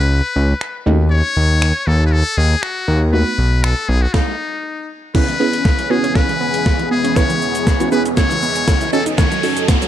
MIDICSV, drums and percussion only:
0, 0, Header, 1, 2, 480
1, 0, Start_track
1, 0, Key_signature, 4, "minor"
1, 0, Tempo, 504202
1, 1061, Time_signature, 4, 2, 24, 8
1, 9403, End_track
2, 0, Start_track
2, 0, Title_t, "Drums"
2, 583, Note_on_c, 9, 26, 116
2, 678, Note_off_c, 9, 26, 0
2, 1543, Note_on_c, 9, 26, 119
2, 1638, Note_off_c, 9, 26, 0
2, 2502, Note_on_c, 9, 26, 115
2, 2597, Note_off_c, 9, 26, 0
2, 3464, Note_on_c, 9, 26, 123
2, 3559, Note_off_c, 9, 26, 0
2, 3941, Note_on_c, 9, 36, 99
2, 3941, Note_on_c, 9, 38, 80
2, 4036, Note_off_c, 9, 36, 0
2, 4036, Note_off_c, 9, 38, 0
2, 4900, Note_on_c, 9, 36, 109
2, 4900, Note_on_c, 9, 38, 50
2, 4900, Note_on_c, 9, 49, 93
2, 4995, Note_off_c, 9, 36, 0
2, 4995, Note_off_c, 9, 38, 0
2, 4995, Note_off_c, 9, 49, 0
2, 5030, Note_on_c, 9, 42, 48
2, 5125, Note_off_c, 9, 42, 0
2, 5268, Note_on_c, 9, 42, 75
2, 5364, Note_off_c, 9, 42, 0
2, 5379, Note_on_c, 9, 36, 118
2, 5381, Note_on_c, 9, 38, 58
2, 5475, Note_off_c, 9, 36, 0
2, 5476, Note_off_c, 9, 38, 0
2, 5509, Note_on_c, 9, 42, 58
2, 5604, Note_off_c, 9, 42, 0
2, 5750, Note_on_c, 9, 42, 74
2, 5845, Note_off_c, 9, 42, 0
2, 5859, Note_on_c, 9, 36, 102
2, 5859, Note_on_c, 9, 38, 57
2, 5954, Note_off_c, 9, 36, 0
2, 5954, Note_off_c, 9, 38, 0
2, 5990, Note_on_c, 9, 42, 50
2, 6085, Note_off_c, 9, 42, 0
2, 6226, Note_on_c, 9, 42, 82
2, 6321, Note_off_c, 9, 42, 0
2, 6339, Note_on_c, 9, 36, 116
2, 6340, Note_on_c, 9, 38, 60
2, 6435, Note_off_c, 9, 36, 0
2, 6435, Note_off_c, 9, 38, 0
2, 6468, Note_on_c, 9, 42, 52
2, 6563, Note_off_c, 9, 42, 0
2, 6708, Note_on_c, 9, 42, 80
2, 6803, Note_off_c, 9, 42, 0
2, 6820, Note_on_c, 9, 36, 106
2, 6820, Note_on_c, 9, 38, 60
2, 6820, Note_on_c, 9, 82, 70
2, 6915, Note_off_c, 9, 36, 0
2, 6915, Note_off_c, 9, 38, 0
2, 6915, Note_off_c, 9, 82, 0
2, 6948, Note_on_c, 9, 42, 50
2, 6948, Note_on_c, 9, 82, 50
2, 7044, Note_off_c, 9, 42, 0
2, 7044, Note_off_c, 9, 82, 0
2, 7062, Note_on_c, 9, 82, 51
2, 7157, Note_off_c, 9, 82, 0
2, 7187, Note_on_c, 9, 42, 78
2, 7187, Note_on_c, 9, 82, 81
2, 7283, Note_off_c, 9, 42, 0
2, 7283, Note_off_c, 9, 82, 0
2, 7300, Note_on_c, 9, 36, 122
2, 7301, Note_on_c, 9, 38, 66
2, 7302, Note_on_c, 9, 82, 78
2, 7395, Note_off_c, 9, 36, 0
2, 7396, Note_off_c, 9, 38, 0
2, 7398, Note_off_c, 9, 82, 0
2, 7429, Note_on_c, 9, 42, 60
2, 7429, Note_on_c, 9, 82, 62
2, 7524, Note_off_c, 9, 42, 0
2, 7524, Note_off_c, 9, 82, 0
2, 7540, Note_on_c, 9, 82, 60
2, 7635, Note_off_c, 9, 82, 0
2, 7669, Note_on_c, 9, 42, 72
2, 7669, Note_on_c, 9, 82, 69
2, 7764, Note_off_c, 9, 42, 0
2, 7764, Note_off_c, 9, 82, 0
2, 7779, Note_on_c, 9, 36, 105
2, 7779, Note_on_c, 9, 38, 68
2, 7779, Note_on_c, 9, 82, 65
2, 7874, Note_off_c, 9, 36, 0
2, 7874, Note_off_c, 9, 38, 0
2, 7874, Note_off_c, 9, 82, 0
2, 7909, Note_on_c, 9, 42, 55
2, 7909, Note_on_c, 9, 82, 55
2, 8005, Note_off_c, 9, 42, 0
2, 8005, Note_off_c, 9, 82, 0
2, 8021, Note_on_c, 9, 82, 62
2, 8116, Note_off_c, 9, 82, 0
2, 8145, Note_on_c, 9, 42, 83
2, 8145, Note_on_c, 9, 82, 82
2, 8240, Note_off_c, 9, 42, 0
2, 8240, Note_off_c, 9, 82, 0
2, 8260, Note_on_c, 9, 36, 119
2, 8260, Note_on_c, 9, 38, 70
2, 8261, Note_on_c, 9, 82, 83
2, 8355, Note_off_c, 9, 36, 0
2, 8355, Note_off_c, 9, 38, 0
2, 8356, Note_off_c, 9, 82, 0
2, 8387, Note_on_c, 9, 42, 51
2, 8387, Note_on_c, 9, 82, 51
2, 8483, Note_off_c, 9, 42, 0
2, 8483, Note_off_c, 9, 82, 0
2, 8500, Note_on_c, 9, 82, 54
2, 8595, Note_off_c, 9, 82, 0
2, 8627, Note_on_c, 9, 42, 78
2, 8627, Note_on_c, 9, 82, 82
2, 8723, Note_off_c, 9, 42, 0
2, 8723, Note_off_c, 9, 82, 0
2, 8740, Note_on_c, 9, 38, 66
2, 8740, Note_on_c, 9, 82, 74
2, 8741, Note_on_c, 9, 36, 113
2, 8835, Note_off_c, 9, 38, 0
2, 8835, Note_off_c, 9, 82, 0
2, 8836, Note_off_c, 9, 36, 0
2, 8869, Note_on_c, 9, 42, 52
2, 8869, Note_on_c, 9, 82, 48
2, 8965, Note_off_c, 9, 42, 0
2, 8965, Note_off_c, 9, 82, 0
2, 8980, Note_on_c, 9, 46, 72
2, 8980, Note_on_c, 9, 82, 54
2, 9076, Note_off_c, 9, 46, 0
2, 9076, Note_off_c, 9, 82, 0
2, 9107, Note_on_c, 9, 42, 80
2, 9107, Note_on_c, 9, 82, 79
2, 9202, Note_off_c, 9, 42, 0
2, 9202, Note_off_c, 9, 82, 0
2, 9219, Note_on_c, 9, 38, 76
2, 9220, Note_on_c, 9, 36, 124
2, 9221, Note_on_c, 9, 82, 86
2, 9315, Note_off_c, 9, 36, 0
2, 9315, Note_off_c, 9, 38, 0
2, 9316, Note_off_c, 9, 82, 0
2, 9348, Note_on_c, 9, 42, 60
2, 9348, Note_on_c, 9, 82, 61
2, 9403, Note_off_c, 9, 42, 0
2, 9403, Note_off_c, 9, 82, 0
2, 9403, End_track
0, 0, End_of_file